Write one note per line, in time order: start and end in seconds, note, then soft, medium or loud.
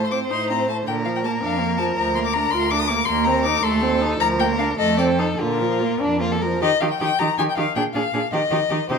0.00 0.21 A2 soft
0.00 0.13 A3 soft
0.00 0.88 C5 soft
0.04 0.07 C6 medium
0.11 0.32 C4 soft
0.11 0.19 D6 medium
0.30 0.78 A2 medium
0.30 0.51 D#4 soft
0.30 0.49 C6 medium
0.50 0.70 C4 soft
0.50 0.68 A#5 medium
0.68 0.86 A3 soft
0.68 0.76 A5 medium
0.86 1.32 A#2 soft
0.86 1.07 D3 soft
0.86 3.06 A#4 medium
0.86 0.94 G5 medium
1.05 1.25 F3 soft
1.05 1.09 F5 medium
1.16 1.19 G5 medium
1.24 1.43 A#3 soft
1.24 1.31 A5 medium
1.41 1.88 F2 medium
1.41 1.61 D4 medium
1.41 1.77 F5 medium
1.60 1.80 A#3 soft
1.77 1.97 F3 medium
1.77 1.85 A5 medium
1.96 2.43 D2 medium
1.96 2.17 F3 medium
1.96 2.14 A#5 medium
2.15 2.37 A#3 soft
2.15 2.19 C6 medium
2.25 2.35 D6 medium
2.34 2.54 D4 medium
2.34 2.52 A#5 medium
2.51 2.99 D2 medium
2.51 2.73 F4 medium
2.51 2.72 C6 medium
2.70 2.91 D4 medium
2.70 2.81 D6 medium
2.79 2.89 D#6 medium
2.88 3.08 A#3 medium
2.88 3.07 D6 medium
3.05 3.54 D#2 medium
3.05 3.28 A#3 medium
3.05 3.66 A#4 medium
3.05 3.26 C6 medium
3.24 3.47 C4 medium
3.24 3.43 A#5 medium
3.43 3.63 D#4 medium
3.43 3.64 D6 medium
3.63 4.10 D#2 medium
3.63 3.83 A3 medium
3.63 4.22 A4 medium
3.63 4.01 C6 medium
3.82 4.03 C4 medium
4.01 4.19 D#4 medium
4.20 4.69 D2 medium
4.20 4.40 F3 medium
4.20 4.79 A#4 medium
4.20 4.28 A#5 loud
4.39 4.60 A#3 medium
4.39 4.47 G5 medium
4.58 4.78 D4 medium
4.58 4.66 F5 medium
4.78 5.29 F2 medium
4.78 5.00 A3 medium
4.78 5.42 A4 medium
4.78 4.97 D#5 medium
4.98 5.20 C4 medium
4.98 5.06 D5 medium
5.19 5.38 D#4 medium
5.19 5.27 C5 medium
5.39 5.90 A#2 medium
5.39 5.62 D3 medium
5.39 5.97 F4 medium
5.39 6.40 A#4 medium
5.60 5.82 F3 medium
5.80 6.02 A#3 medium
6.01 6.52 F2 medium
6.01 6.23 D4 medium
6.01 6.20 D4 medium
6.21 6.43 A#3 medium
6.21 6.33 F4 medium
6.32 6.43 A4 medium
6.41 6.62 F3 medium
6.41 6.61 A#4 medium
6.62 6.70 D#3 medium
6.62 6.70 D#4 medium
6.62 6.69 G4 medium
6.62 6.82 D#5 medium
6.80 6.89 D#3 medium
6.80 6.89 D#4 soft
6.80 6.89 G4 medium
6.80 6.90 F5 medium
6.90 6.99 G5 medium
7.00 7.08 D#3 medium
7.00 7.09 D#4 medium
7.00 7.08 G4 medium
7.00 7.20 G5 medium
7.19 7.27 D#3 medium
7.19 7.27 D#4 medium
7.19 7.27 G4 medium
7.19 7.38 A#5 medium
7.38 7.46 D#3 medium
7.38 7.46 D#4 medium
7.38 7.46 G4 medium
7.38 7.42 G#5 medium
7.49 7.57 G5 medium
7.57 7.65 D#3 medium
7.57 7.65 D#4 medium
7.57 7.64 G4 soft
7.57 7.75 F5 medium
7.75 7.83 A#2 medium
7.75 7.84 D4 medium
7.75 7.83 G#4 medium
7.75 7.83 G5 medium
7.94 8.02 A#2 medium
7.94 8.02 D4 medium
7.94 8.02 G#4 medium
7.94 8.31 F5 medium
8.13 8.21 A#2 medium
8.13 8.21 D4 soft
8.13 8.21 G#4 medium
8.32 8.40 D#3 medium
8.32 8.40 D#4 medium
8.32 8.41 G4 medium
8.32 8.89 D#5 medium
8.51 8.59 D#3 medium
8.51 8.59 D#4 medium
8.51 8.58 G4 medium
8.70 8.78 D#3 medium
8.70 8.79 D#4 medium
8.70 8.77 G4 soft
8.89 8.97 C3 medium
8.89 8.98 D#4 medium
8.89 8.96 G4 medium
8.89 8.98 C5 medium